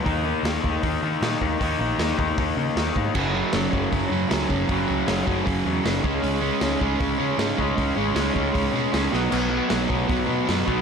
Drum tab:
CC |--------|--------|x-------|--------|
HH |o-o-o-o-|o-o-o-o-|--o-o-o-|o-o-o-o-|
SD |--o---o-|--o---o-|--o---o-|--o---o-|
BD |o--oo--o|o--oo--o|o--oo--o|o--oo--o|

CC |--------|--------|x-------|
HH |o-o-o-o-|o-o-o-o-|--o-o-o-|
SD |--o---o-|--o---oo|--o---o-|
BD |---oo--o|o--oo---|---oo--o|